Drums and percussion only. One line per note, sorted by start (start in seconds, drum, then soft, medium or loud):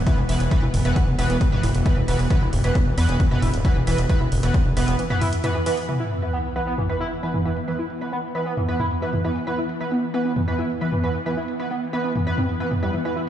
0.07 kick loud
0.07 closed hi-hat medium
0.29 open hi-hat loud
0.40 closed hi-hat medium
0.51 kick loud
0.51 closed hi-hat medium
0.74 mid tom loud
0.74 open hi-hat loud
0.85 closed hi-hat medium
0.96 kick loud
0.96 closed hi-hat medium
1.19 open hi-hat loud
1.30 closed hi-hat medium
1.41 kick loud
1.41 closed hi-hat medium
1.52 mid tom medium
1.63 mid tom loud
1.63 open hi-hat loud
1.75 closed hi-hat medium
1.86 kick loud
1.86 closed hi-hat medium
1.86 mid tom medium
2.08 open hi-hat loud
2.19 open hi-hat medium
2.30 kick loud
2.30 closed hi-hat medium
2.53 mid tom medium
2.53 open hi-hat loud
2.64 closed hi-hat medium
2.75 kick loud
2.75 closed hi-hat medium
2.98 open hi-hat loud
3.09 closed hi-hat medium
3.20 kick loud
3.20 closed hi-hat medium
3.31 mid tom medium
3.42 mid tom medium
3.42 open hi-hat loud
3.54 closed hi-hat medium
3.65 kick loud
3.65 closed hi-hat medium
3.87 open hi-hat loud
3.98 closed hi-hat medium
4.09 kick loud
4.09 closed hi-hat medium
4.32 mid tom medium
4.32 open hi-hat loud
4.43 closed hi-hat medium
4.54 kick loud
4.54 closed hi-hat medium
4.77 open hi-hat loud
4.88 closed hi-hat medium
4.99 closed hi-hat medium
5.10 mid tom medium
5.21 mid tom medium
5.21 open hi-hat loud
5.33 closed hi-hat medium
5.44 closed hi-hat medium
5.44 mid tom medium
5.66 open hi-hat loud
5.77 open hi-hat medium
5.89 crash medium
6.11 closed hi-hat medium
6.22 closed hi-hat medium
6.33 closed hi-hat medium
6.56 closed hi-hat medium
6.67 closed hi-hat medium
6.78 closed hi-hat medium
6.78 mid tom medium
7.01 closed hi-hat loud
7.12 closed hi-hat medium
7.23 closed hi-hat medium
7.34 mid tom medium
7.45 closed hi-hat medium
7.57 closed hi-hat medium
7.68 closed hi-hat medium
7.90 closed hi-hat medium
8.01 closed hi-hat medium
8.12 closed hi-hat medium
8.35 closed hi-hat medium
8.46 closed hi-hat medium
8.57 closed hi-hat medium
8.57 mid tom medium
8.80 closed hi-hat medium
8.80 mid tom medium
8.91 closed hi-hat medium
9.02 closed hi-hat medium
9.13 mid tom medium
9.24 closed hi-hat loud
9.36 closed hi-hat medium
9.47 closed hi-hat medium
9.69 closed hi-hat medium
9.80 closed hi-hat medium
9.92 closed hi-hat medium
10.14 closed hi-hat medium
10.25 closed hi-hat medium
10.36 closed hi-hat medium
10.36 mid tom medium
10.59 closed hi-hat medium
10.70 closed hi-hat medium
10.81 closed hi-hat medium
10.92 mid tom medium
11.04 closed hi-hat medium
11.15 closed hi-hat medium
11.26 closed hi-hat medium
11.48 closed hi-hat medium
11.60 closed hi-hat medium
11.71 closed hi-hat medium
11.93 closed hi-hat medium
12.04 closed hi-hat medium
12.16 closed hi-hat medium
12.16 mid tom medium
12.38 closed hi-hat medium
12.38 mid tom medium
12.49 closed hi-hat medium
12.60 closed hi-hat medium
12.72 mid tom medium
12.83 closed hi-hat medium
12.94 closed hi-hat medium
13.05 closed hi-hat medium